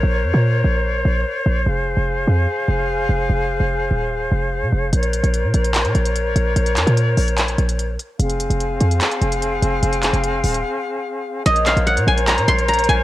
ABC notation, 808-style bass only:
X:1
M:4/4
L:1/16
Q:1/4=147
K:Bbm
V:1 name="808-style bass" clef=bass
B,,,2 F,, B,,3 B,,,4 B,,,2 z2 B,,,2 | F,,,3 F,,,3 F,,2 z2 F,,,4 F,,,2 | F,,,3 F,,,3 E,,,4 F,,,3 C, F,,,2 | B,,,3 B,,,2 B,, B,,,3 B,, B,,,4 B,,,2 |
B,,,2 F,, B,,3 B,,,4 B,,,4 z2 | F,,,3 F,,,3 F,,2 z2 F,,,4 F,,,2 | F,,,3 F,,,3 E,,,2 z8 | B,,,3 B,,,2 B,, B,,,3 B,, B,,,4 B,,,2 |]